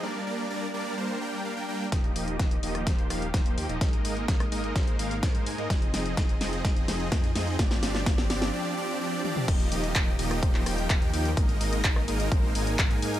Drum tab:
CC |----------------|----------------|----------------|----------------|
HH |----------------|xxoxxxoxxxoxxxox|xxoxxxoxxxoxxxox|xxoxxxoxxxoxxxox|
CP |----------------|----------------|----------------|----------------|
SD |----------------|o---o--ro-r-o---|o---or--o---o---|o-o-o-o-o-o-o-o-|
T1 |----------------|----------------|----------------|----------------|
T2 |----------------|----------------|----------------|----------------|
BD |----------------|o---o---o---o---|o---o---o---o---|o---o---o---o---|

CC |----------------|x---------------|----------------|
HH |xxoxxxox--------|xxoxx-oxx-oxxxox|xxoxx-oxx-oxxxox|
CP |----------------|----x----x--x---|----x-------x---|
SD |oooooooo--------|-------r--r-----|-----r----------|
T1 |--------------o-|----------------|----------------|
T2 |---------------o|----------------|----------------|
BD |o---o-----------|o---o---o---o---|o---o---o---o---|